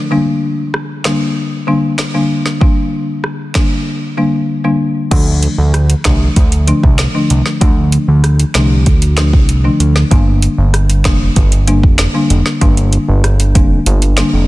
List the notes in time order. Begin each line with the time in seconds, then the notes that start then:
0.11 D3 G3 A#3 D4
0.74 cross-stick
1.04 D3 G3 A#3 D4, finger snap, snare
1.67 D3 G3 A#3 D4
1.98 finger snap, snare
2.14 D3 G3 A#3 D4
2.46 snare
2.61 D3 G3 A#3 D4, kick
3.24 cross-stick
3.54 D3 G3 A#3 D4, finger snap, kick, snare
4.17 D3 G3 A#3 D4
4.64 D3 G3 A#3 D4
5.11 D2 D3 F3 A3 D4, kick, closed hi-hat, crash
5.43 closed hi-hat
5.58 D2
5.74 cross-stick, closed hi-hat
5.90 closed hi-hat
6.04 C2 D3 F3 A3 D4, finger snap, kick, snare, closed hi-hat
6.36 D2, kick, closed hi-hat
6.52 closed hi-hat
6.67 D3 F3 A3 D4, closed hi-hat
6.83 C2, kick
6.98 finger snap, snare, closed hi-hat
7.14 D3 F3 A3 D4
7.30 C2, closed hi-hat
7.46 snare
7.61 D2 D3 F3 A3 D4, kick, closed hi-hat
7.92 closed hi-hat
8.08 D2
8.24 cross-stick, closed hi-hat
8.40 closed hi-hat
8.54 C2 D3 F3 A3 D4, finger snap, snare, closed hi-hat
8.86 D2, kick, closed hi-hat
9.02 closed hi-hat
9.17 D3 F3 A3 D4, finger snap, snare, closed hi-hat
9.33 C2, kick
9.49 closed hi-hat
9.64 D3 F3 A3 D4
9.80 D2, closed hi-hat
9.96 snare
10.11 G1 D3 G3 A#3 D4, kick, closed hi-hat
10.42 closed hi-hat
10.58 G1
10.74 cross-stick, closed hi-hat
10.90 closed hi-hat
11.04 F1 D3 G3 A#3 D4, finger snap, kick, snare, closed hi-hat
11.36 G1, kick, closed hi-hat
11.52 closed hi-hat
11.67 D3 G3 A#3 D4, closed hi-hat
11.83 F1, kick
11.98 finger snap, snare, closed hi-hat
12.14 D3 G3 A#3 D4
12.30 F1, closed hi-hat
12.46 snare
12.61 G1 D3 G3 A#3 D4, kick, closed hi-hat
12.77 closed hi-hat
12.93 closed hi-hat
13.08 G1
13.24 cross-stick, closed hi-hat
13.40 closed hi-hat
13.55 F1 D3 G3 A#3 D4, kick, closed hi-hat
13.86 G1, closed hi-hat
14.02 closed hi-hat
14.17 D3 G3 A#3 D4, finger snap, snare, closed hi-hat
14.33 F1